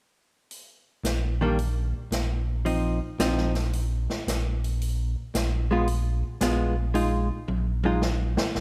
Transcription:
0.51 open hi-hat
1.03 A#1, snare, closed hi-hat
1.41 D#3 G3 A#3 D4
1.59 open hi-hat
2.11 A#1, snare, closed hi-hat
2.65 F3 C4 D#4, open hi-hat
3.18 A#1 F3 C4 D#4, snare, closed hi-hat
3.37 snare
3.55 snare, open hi-hat
3.73 open hi-hat
4.10 snare
4.27 A#1, snare, closed hi-hat
4.64 open hi-hat
4.81 open hi-hat
5.34 A#1, snare, closed hi-hat
5.71 G#3 B3 F4
5.87 open hi-hat
6.41 A#1 G#3 B3 F4, snare, closed hi-hat
6.94 G#3 D#4 F4, open hi-hat
7.48 A#1, high tom
7.84 G#3 D#4 F4, high tom
8.02 snare
8.37 snare
8.55 A#1, snare

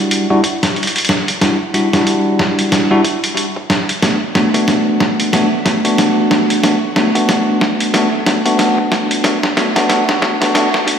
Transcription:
Already playing: G3 D4 E4 F#4
0.11 closed hi-hat
0.30 G3 D4 E4 F#4
0.44 kick, closed hi-hat
0.63 snare, closed hi-hat
0.76 closed hi-hat
0.83 closed hi-hat
0.87 closed hi-hat
0.96 closed hi-hat
0.98 closed hi-hat
1.05 closed hi-hat
1.09 snare, closed hi-hat
1.28 closed hi-hat
1.41 G3 D4 E4 F#4, kick, snare, closed hi-hat
1.74 G3 D4 E4 F#4, closed hi-hat
1.93 G3 D4 E4 F#4, kick, snare, closed hi-hat
2.07 closed hi-hat
2.39 kick, snare
2.59 closed hi-hat
2.72 snare, closed hi-hat
2.91 G3 D4 E4 F#4
3.05 kick, closed hi-hat
3.24 closed hi-hat
3.37 closed hi-hat
3.56 kick
3.70 snare, closed hi-hat
3.89 closed hi-hat
4.02 A3 B3 D4 F#4, kick, snare, closed hi-hat
4.35 A3 B3 D4 F#4, snare, closed hi-hat
4.54 A3 B3 D4 F#4, kick, closed hi-hat
4.68 snare, closed hi-hat
5.00 kick, snare
5.20 closed hi-hat
5.33 A3 B3 D4 F#4, snare, closed hi-hat
5.65 A3 B3 D4 F#4, kick, snare, closed hi-hat
5.85 A3 B3 D4 F#4, closed hi-hat
5.98 snare, closed hi-hat
6.31 snare, closed hi-hat
6.50 closed hi-hat
6.63 A3 B3 D4 F#4, kick, snare, closed hi-hat
6.96 A3 B3 D4 F#4, snare, closed hi-hat
7.15 A3 B3 D4 F#4, kick, closed hi-hat
7.29 snare, closed hi-hat
7.61 kick, snare
7.80 closed hi-hat
7.94 A3 B3 D4 F#4, snare, closed hi-hat
8.26 A3 B3 D4 F#4, kick, snare, closed hi-hat
8.46 A3 B3 D4 F#4, closed hi-hat
8.59 snare, closed hi-hat
8.78 kick
8.92 snare, closed hi-hat
9.11 closed hi-hat
9.24 A3 B3 D4 F#4, kick, snare, closed hi-hat
9.43 snare
9.57 A3 B3 D4 F#4, snare, closed hi-hat
9.76 A3 B3 D4 F#4, kick, snare, closed hi-hat
9.89 A3 B3 D4 F#4, snare, closed hi-hat
10.09 snare
10.22 A3 B3 D4 F#4, kick, snare
10.41 A3 B3 D4 F#4, snare, closed hi-hat
10.54 A3 B3 D4 F#4, snare, closed hi-hat
10.74 snare
10.87 A3 B3 D4 F#4, kick, closed hi-hat

